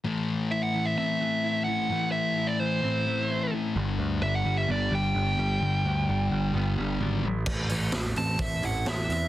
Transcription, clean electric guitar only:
X:1
M:4/4
L:1/8
Q:1/4=129
K:Ador
V:1 name="Clean electric guitar" clef=bass
A,,2 E E, C E, E E, | A,,2 E E, C E, E E, | G,,2 D G, B, G, D G, | G,,2 D G, B, G, D A,, |
A,, E, E, C A E E, C |]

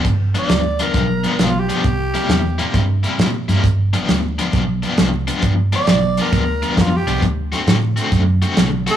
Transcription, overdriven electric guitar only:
X:1
M:4/4
L:1/8
Q:"Swing" 1/4=134
K:Gmix
V:1 name="Overdriven electric guitar"
z [G,,F,B,D] z [G,,F,B,D] z [G,,F,B,D] z [G,,F,B,D] | z [C,G,_B,E] z [C,G,B,E] z [C,G,B,E] z [C,G,B,E] | z [G,,F,B,D] z [G,,F,B,D] z [G,,F,B,D] z [G,,F,B,D] | z [G,,F,B,D] z [G,,F,B,D] z [G,,F,B,D] z [G,,F,B,D] |
z [D,A,C^F] z [D,A,CF] z [D,A,CF] z [D,A,CF] |]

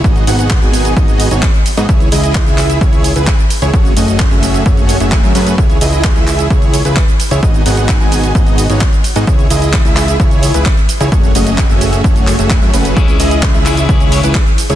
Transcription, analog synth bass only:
X:1
M:4/4
L:1/16
Q:1/4=130
K:C#m
V:1 name="Analog synth bass" clef=bass
G,,,2 G,,,3 G,,,3 G,,,3 G,,, z3 G,, | C,,2 C,,3 C,,3 C,,3 C,, z3 C,, | F,,,2 F,,,3 F,,,3 F,,,3 F,,,2 F,, F,,2 | C,,2 C,,3 C,,3 C,,3 C,, z3 C,, |
G,,,2 G,,,3 G,,,3 G,,,3 G,,, z3 G,, | C,,2 C,,3 C,,3 C,,3 C,, z3 C,, | F,,,2 F,,,3 F,,,3 F,,,3 F,,,2 F,, F,,,2 | C,,2 C,,3 C,,3 C,,3 C,, z3 C,, |]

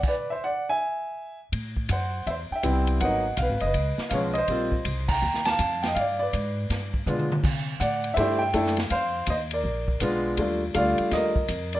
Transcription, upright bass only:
X:1
M:4/4
L:1/8
Q:"Swing" 1/4=163
K:Ador
V:1 name="Upright bass" clef=bass
z8 | A,,2 F,,2 E,, z C,,2 | _A,,,2 (3_C,, A,,, _G,,, ^C,, z B,,,2 | _B,,,2 C,,2 _E,,2 =F,,2 |
G,,2 _A,,2 G,,2 B,,2 | C,2 A,,2 G,,2 F,,2 | =F,,2 _E,,2 _B,,,2 _C,,2 | _E,,2 D,, z E,,2 =F,,2 |]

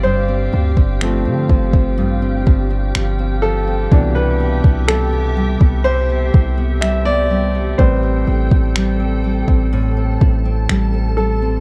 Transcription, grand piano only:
X:1
M:4/4
L:1/16
Q:1/4=62
K:Gmix
V:1 name="Grand piano"
c8 z6 A2- | A B3 A4 c4 e d3 | c8 z6 A2 |]
V:2 name="Grand piano"
z4 [F,A,C]6 z6 | [B,,E,D]16 | [G,CB]2 z12 z2 |]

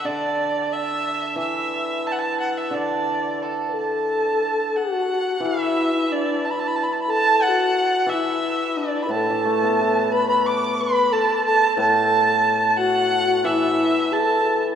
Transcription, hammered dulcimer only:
X:1
M:2/4
L:1/16
Q:1/4=89
K:none
V:1 name="Hammered dulcimer" clef=bass
D,8 | E,8 | D,8- | D,4 z4 |
E,8- | E,4 z4 | E,6 A,, E, | A, B, E6- |
E2 z4 A,,2- | A,,8 | E,8 |]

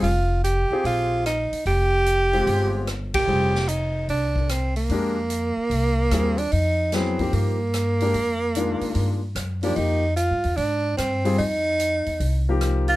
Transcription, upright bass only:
X:1
M:4/4
L:1/8
Q:"Swing" 1/4=148
K:Fdor
V:1 name="Upright bass" clef=bass
F,,,3 z B,,,3 z | F,,,4 G,,,4 | F,,,4 C,,4 | F,,3 z C,,2 E,,2 |
F,,4 G,,4 | F,,3 z G,,2 _G,,2 | F,,2- (3F,, G,, =E,, A,,2 G,,2 | F,,3 =E,, C,,4 |]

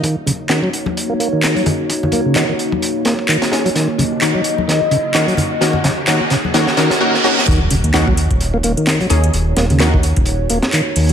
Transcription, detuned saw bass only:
X:1
M:4/4
L:1/16
Q:"Swing 16ths" 1/4=129
K:Ebm
V:1 name="Detuned saw bass" clef=bass
E,,,2 E,,, E,,4 E,,,3 E,,, z4 z | E,,,2 E,,, E,,4 E,,,3 E,,, z4 z | E,,,2 z E,,4 E,,,3 z6 | z2 E,,, E,,4 E,,,3 z6 |
E,,,2 E,,, E,,4 E,,,3 E,,, z3 E,,2 | E,,,2 E,,, E,,4 E,,,3 E,,, z3 E,,2 |]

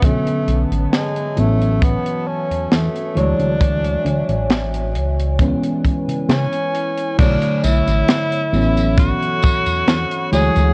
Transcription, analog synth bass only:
X:1
M:4/4
L:1/16
Q:1/4=67
K:A
V:1 name="Analog synth bass" clef=bass
B,,, z B,,, A,,, z2 A,,,3 z2 E,, E,, z D,, D,,- | D,,2 D,, A,,,3 C,,3 z2 C, C, z3 | B,,, z B,,, A,,, z2 A,,,3 z2 E,, E,, z D,, D,, |]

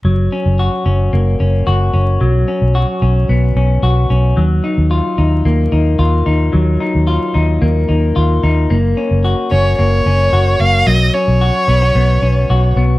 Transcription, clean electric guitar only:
X:1
M:4/4
L:1/16
Q:1/4=111
K:F#
V:1 name="Clean electric guitar"
F,2 C2 F2 C2 A,2 C2 F2 C2 | F,2 C2 F2 C2 B,2 C2 F2 C2 | F,2 D2 E2 D2 A,2 D2 E2 D2 | F,2 D2 E2 D2 A,2 D2 E2 D2 |
A,2 C2 F2 C2 A,2 C2 F2 A,2 | F,2 C2 F2 B, C B,2 C2 F2 B,2 |]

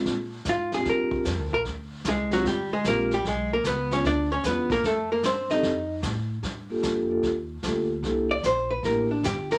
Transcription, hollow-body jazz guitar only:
X:1
M:4/4
L:1/8
Q:"Swing" 1/4=150
K:Bb
V:1 name="Hollow-body jazz guitar"
z2 F _A B3 B | z2 [_A,_A] [_G,_G] [=G,=G] [A,A] [B,B] [G,G] | [^G,^G] [B,B] [=B,=B] [_D_d] [=D=d] [_D_d] [B,B] [_B,_B] | [A,A] [B,B] [Cc] [Ee]3 z2 |
z8 | z d c =B _B D G B |]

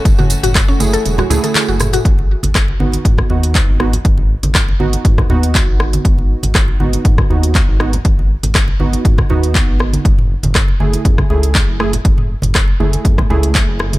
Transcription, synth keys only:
X:1
M:4/4
L:1/8
Q:"Swing 16ths" 1/4=120
K:G#phr
V:1 name="Synth keys"
z3 [A,EG]2 [A,EG]3 | z3 [B,DF]2 [B,DF]2 [B,DF] | z3 [B,DF]2 [B,DF]3- | [B,DF]3 [B,DF]2 [B,DF]2 [B,DF] |
z3 [B,DF]2 [B,DF]3 | z3 [A,EG]2 [A,EG]2 [A,EG] | z3 [A,EG]2 [A,EG]3 |]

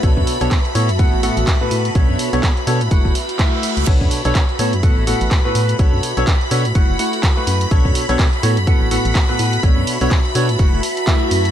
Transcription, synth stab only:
X:1
M:4/4
L:1/16
Q:"Swing 16ths" 1/4=125
K:Bm
V:1 name="Synth stab"
[B,,B,DAc]3 [B,,B,DAc]2 z [A,,B,FAc] z [A,,B,FAf]2 [A,,B,FAf]3 [A,,B,FAB]3 | [B,,B,DAc]3 [B,,B,DAc]2 z [B,DAc] z [A,EFf]2 z2 [A,EFe]4 | [B,,B,DAc]3 [B,,B,DAc]2 z [A,,B,FAc] z [A,,B,FAf]2 [A,,B,FAf]3 [A,,B,FAB]3 | [B,,B,DAc]3 [B,,B,DAc]2 z [B,DAc] z [A,EFf]2 [A,EFf]3 [A,EFB]3 |
[B,,B,DAc]3 [B,,B,DAc]2 z [A,,B,FAc] z [A,,B,FAf]2 [A,,B,FAf]3 [A,,B,FAB]3 | [B,,B,DAc]3 [B,,B,DAc]2 z [B,DAc] z [A,EFf]2 z2 [A,EFe]4 |]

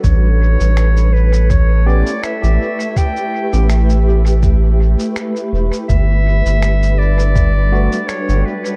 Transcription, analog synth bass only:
X:1
M:4/4
L:1/16
Q:"Swing 16ths" 1/4=82
K:Amix
V:1 name="Analog synth bass" clef=bass
A,,,3 A,,,8 z2 A,,, z2 | z3 A,,,8 z3 E,,, z | G,,,3 G,,,8 z2 G,,, z2 |]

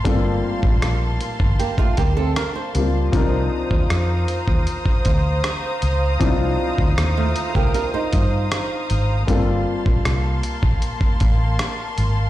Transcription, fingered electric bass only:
X:1
M:4/4
L:1/16
Q:1/4=78
K:Gm
V:1 name="Fingered electric bass" clef=bass
G,,,2 z A,,, B,,,2 z G,,, z2 D,,2 z2 ^C,,2 | C,,2 z E,, F,,2 z E,, z2 D,,2 z2 ^C,,2 | C,,2 z D,, E,,2 z C,, z2 G,,2 z2 _A,,,2 | G,,,2 z B,,, C,,2 z B,,, z2 A,,,2 z2 _A,,,2 |]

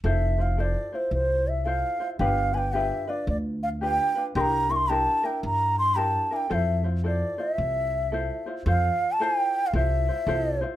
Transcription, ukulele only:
X:1
M:4/4
L:1/8
Q:"Swing" 1/4=111
K:F
V:1 name="Ukulele"
[EFAc] [EFc] [EFAc] [EFc]3 [EFAc] [EFc] | [DFG=B] [DFB] [DFGB] [DFB]3 [DFGB] [DFB] | [DEGB] [DEB] [DEGB] [DEB]3 [DEGB] [DEB] | [EFAc] [EFc] [EFAc] [EFc]3 [EFAc] [EFc] |
[FAc]2 [EFAc]2 [EFAc] [EFc] [EFAc] [EFc] |]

